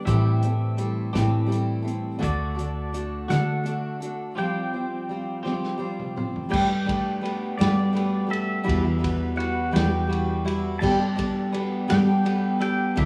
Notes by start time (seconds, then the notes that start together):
0.05 A2 E3 G3 C4 E4 G4 A4 E5, kick, closed hi-hat
0.42 G3 C4 E4 A4, closed hi-hat
0.77 G3 C4 E4 A4, closed hi-hat
1.13 A2 E3 G3 C4 E4 G4 A4, kick, snare, closed hi-hat
1.47 G3 C4 E4 A4
1.52 closed hi-hat
1.82 G3 C4 E4 A4
1.88 closed hi-hat
2.19 D2 D3 A3 D4 F#4 A4, closed hi-hat
2.23 D5, kick
2.55 D4 F#4 A4, closed hi-hat
2.93 A3 D4 F#4 A4, closed hi-hat
3.28 D3 A3 D4 F#4 A4 F#5, snare, closed hi-hat
3.64 A3 D4 F#4 A4, closed hi-hat
4.00 D4 F#4 A4, closed hi-hat
4.37 F3 G3 C4 F4 G4 C5 G5
4.73 C4 F4 C5
5.09 G3 C4 F4 C5
5.43 F3 G3 C4 F4 G4 C5, snare
5.64 snare
5.78 G3 C4 F4 C5
6.00 mid tom
6.16 C4 F4 C5, mid tom
6.36 floor tom
6.49 G3 A3 D4 G4 B4 G5
6.53 G2, kick, crash
6.67 D4 G4 B4
6.85 A3 D4 G4 B4, kick
6.89 ride
7.21 A3 B3 D4 G4 B4
7.25 ride
7.58 G2 G3 A3 D4 G4 B4 D5, snare, ride
7.76 D4 G4 B4
7.93 A3 B3 D4 G4 B4, ride
8.27 A3 D4 G4 A4 B4
8.31 E5, ride
8.63 E3 G3 E4 F#4 B4
8.68 E2, kick, ride
8.81 E4 F#4 B4
8.98 G3 E4 F#4 B4
9.04 B3, kick, ride
9.36 G3 E4 F#4 B4 F#5
9.40 ride
9.71 E2 E3 G3 E4 F#4 B4 G5
9.76 snare, ride
9.89 E4 F#4 B4
10.07 G3 E4 F#4 B4
10.12 ride
10.45 G3 E4 F#4 B4, ride
10.79 G2 G3 B3 D4 G4 A4 A5, kick
10.83 crash
10.98 D4 G4 A4
11.16 B3 D4 G4 A4, kick, ride
11.52 B3 D4 G4 A4, ride
11.88 G2 G3 B3 D4 G4 A4 G5, snare, ride
12.05 D4 G4 A4
12.24 B3 D4 G4 A4, ride
12.59 B3 D4 G4 A4 G5, ride
12.96 D2 D3 F#3 A3 D4 E4 A4 E5, kick, ride